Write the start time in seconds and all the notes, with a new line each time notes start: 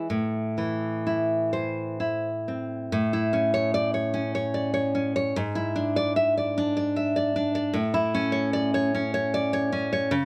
0.10 A2
0.58 E3
1.07 E4
1.53 C5
2.00 E4
2.48 C4
2.92 A2
3.13 E4
3.33 C#4
3.54 C#5
3.74 D5
3.94 C#5
4.14 C#4
4.35 C#5
4.54 D5
4.74 C#5
4.95 C#4
5.16 C#5
5.36 G#2
5.55 E4
5.76 D4
5.96 D5
6.16 E5
6.38 D5
6.58 D4
6.77 D5
6.96 E5
7.16 D5
7.36 D4
7.55 D5
7.74 A2
7.94 E4
8.14 C#4
8.32 C#5
8.53 D5
8.74 C#5
8.95 C#4
9.14 C#5
9.34 D5
9.53 C#5
9.72 C#4
9.93 C#5
10.11 C#3